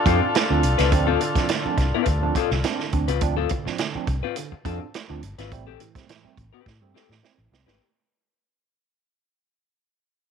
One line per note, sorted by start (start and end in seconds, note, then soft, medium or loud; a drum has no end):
0.00 2.90 D4 medium
0.00 2.90 F4 medium
0.00 2.90 A4 medium
0.06 0.19 F2 loud
0.06 0.19 F3 medium
0.06 0.19 C4 medium
0.06 0.22 C4 medium
0.06 0.19 D4 medium
0.06 0.21 F4 medium
0.06 0.20 A4 loud
0.06 kick medium
0.06 closed hi-hat medium
0.21 0.27 C4 soft
0.21 0.27 D4 soft
0.21 muted clean electric guitar stroke soft
0.35 muted clean electric guitar stroke soft
0.35 snare loud
0.35 closed hi-hat medium
0.50 0.62 D2 medium
0.50 0.61 F3 medium
0.50 0.62 C4 medium
0.50 0.62 D4 medium
0.50 muted clean electric guitar stroke soft
0.63 0.76 C2 medium
0.63 closed hi-hat medium
0.78 0.92 C#2 medium
0.78 0.90 D3 medium
0.78 0.90 C4 medium
0.78 0.91 F4 medium
0.78 0.92 B4 medium
0.78 snare soft
0.78 closed hi-hat medium
0.92 1.16 D2 loud
0.92 1.05 F3 medium
0.92 1.05 C4 medium
0.92 1.05 D4 loud
0.92 muted clean electric guitar stroke soft
0.92 kick loud
0.92 closed hi-hat medium
1.07 1.20 C4 medium
1.07 1.21 F4 medium
1.07 1.20 A4 medium
1.21 1.34 D3 medium
1.21 muted clean electric guitar stroke soft
1.21 closed hi-hat medium
1.35 1.47 F3 medium
1.35 1.48 C4 medium
1.35 1.48 D4 medium
1.35 muted fingered electric bass stroke soft
1.35 muted clean electric guitar stroke soft
1.35 kick medium
1.35 snare soft
1.35 closed hi-hat medium
1.49 1.62 D3 medium
1.49 muted clean electric guitar stroke soft
1.49 snare loud
1.49 closed hi-hat loud
1.65 1.76 F3 medium
1.65 1.76 C4 medium
1.65 1.76 D4 medium
1.65 muted fingered electric bass stroke soft
1.65 muted clean electric guitar stroke soft
1.77 1.91 C2 medium
1.77 kick loud
1.77 snare soft
1.77 closed hi-hat medium
1.94 2.06 C4 medium
1.94 2.07 F4 medium
1.94 2.08 B4 loud
2.06 2.30 D2 medium
2.06 muted clean electric guitar stroke soft
2.06 kick medium
2.06 closed hi-hat medium
2.22 2.33 F3 medium
2.22 2.33 C4 medium
2.22 2.34 D4 medium
2.22 muted clean electric guitar stroke soft
2.35 2.52 C4 medium
2.35 2.52 F4 medium
2.35 2.50 A4 loud
2.35 kick medium
2.35 closed hi-hat medium
2.51 2.62 C2 medium
2.51 2.62 D3 medium
2.51 muted clean electric guitar stroke soft
2.51 snare soft
2.64 2.77 C4 medium
2.64 2.77 D4 medium
2.64 muted clean electric guitar stroke soft
2.64 snare loud
2.64 closed hi-hat medium
2.80 2.91 D3 medium
2.80 muted clean electric guitar stroke medium
2.80 snare soft
2.93 3.06 D2 medium
2.93 3.06 C4 medium
2.93 3.06 D4 medium
2.93 kick medium
2.93 closed hi-hat medium
3.08 3.19 C#2 medium
3.08 3.21 C4 medium
3.08 3.21 F4 medium
3.08 3.22 B4 medium
3.08 closed hi-hat medium
3.21 3.45 D2 medium
3.21 3.34 F3 medium
3.21 3.34 C4 medium
3.21 3.35 D4 loud
3.21 muted clean electric guitar stroke soft
3.21 kick loud
3.21 closed hi-hat loud
3.37 3.50 C4 medium
3.37 3.50 F4 medium
3.37 3.50 A4 medium
3.49 3.63 D3 medium
3.49 muted clean electric guitar stroke soft
3.49 kick medium
3.49 closed hi-hat medium
3.65 3.77 F3 medium
3.65 3.77 C4 medium
3.65 3.77 D4 medium
3.65 muted clean electric guitar stroke soft
3.65 muted fingered electric bass stroke soft
3.65 snare soft
3.78 3.92 D3 medium
3.78 muted clean electric guitar stroke soft
3.78 snare loud
3.78 closed hi-hat medium
3.95 4.06 F3 medium
3.95 4.06 C4 medium
3.95 4.06 D4 medium
3.95 muted fingered electric bass stroke medium
3.95 muted clean electric guitar stroke soft
4.07 4.20 C2 loud
4.07 4.15 C4 soft
4.07 4.15 D4 soft
4.07 kick medium
4.07 closed hi-hat medium
4.23 4.35 C4 medium
4.23 4.36 F4 medium
4.23 4.37 B4 medium
4.36 4.50 D3 medium
4.36 muted clean electric guitar stroke soft
4.36 closed hi-hat medium
4.52 muted fingered electric bass stroke soft
4.52 muted clean electric guitar stroke soft
4.65 4.78 F2 loud
4.65 4.78 F3 medium
4.65 4.81 C4 medium
4.65 4.78 C4 medium
4.65 4.78 D4 medium
4.65 4.80 F4 medium
4.65 4.79 A4 medium
4.65 kick medium
4.65 closed hi-hat medium
4.80 4.86 C4 soft
4.80 4.86 D4 soft
4.80 muted clean electric guitar stroke soft
4.94 muted clean electric guitar stroke soft
4.94 snare loud
4.94 closed hi-hat medium
5.09 5.21 D2 medium
5.09 5.20 F3 medium
5.09 5.21 C4 medium
5.09 5.21 D4 medium
5.09 muted clean electric guitar stroke medium
5.23 5.35 G1 loud
5.23 closed hi-hat medium
5.38 5.52 G#1 medium
5.38 5.49 D3 medium
5.38 5.51 C4 medium
5.38 5.52 F4 medium
5.38 5.52 B4 medium
5.38 snare soft
5.38 closed hi-hat medium
5.52 5.75 A1 loud
5.52 5.64 G3 medium
5.52 5.64 A3 medium
5.52 5.64 C4 medium
5.52 muted clean electric guitar stroke soft
5.52 kick loud
5.52 closed hi-hat medium
5.67 5.79 C4 medium
5.67 5.80 G4 medium
5.67 5.80 A4 medium
5.80 5.93 A2 medium
5.80 5.93 E3 medium
5.80 muted clean electric guitar stroke soft
5.80 closed hi-hat medium
5.95 6.06 G3 medium
5.95 6.06 A3 medium
5.95 6.07 C4 medium
5.95 muted fingered electric bass stroke soft
5.95 muted clean electric guitar stroke soft
5.95 kick medium
5.95 snare soft
5.95 closed hi-hat medium
6.09 6.21 A2 medium
6.09 6.21 E3 medium
6.09 muted clean electric guitar stroke soft
6.09 snare loud
6.09 closed hi-hat loud
6.24 6.35 G3 medium
6.24 6.35 A3 medium
6.24 6.35 C4 medium
6.24 muted clean electric guitar stroke soft
6.24 muted fingered electric bass stroke soft
6.37 6.50 A1 medium
6.37 6.43 A3 soft
6.37 6.43 C4 soft
6.37 kick medium
6.37 closed hi-hat medium
6.53 6.65 C4 medium
6.53 6.66 G4 medium
6.53 6.67 B4 medium
6.66 6.81 A2 medium
6.66 muted clean electric guitar stroke soft
6.66 kick medium
6.66 snare medium
6.81 6.92 G2 medium
6.81 6.92 G3 medium
6.81 6.92 A3 medium
6.81 6.92 C4 medium
6.81 muted clean electric guitar stroke soft
6.94 7.10 C4 medium
6.94 7.09 G4 medium
6.94 7.09 A4 medium
6.94 snare medium
7.09 7.20 A2 medium
7.09 7.21 A2 medium
7.09 7.21 E3 medium
7.09 muted clean electric guitar stroke soft
7.09 snare medium
7.23 7.35 A3 medium
7.23 7.36 C4 medium
7.23 muted clean electric guitar stroke soft
7.23 snare medium
7.38 7.49 A1 loud
7.38 7.50 A2 medium
7.38 7.50 E3 medium
7.38 muted clean electric guitar stroke soft
7.52 7.64 C2 medium
7.52 7.64 A3 medium
7.52 7.65 C4 medium
7.52 snare medium
7.66 7.78 G#1 medium
7.66 7.81 C4 medium
7.66 7.81 G4 medium
7.66 7.80 B4 medium
7.66 snare medium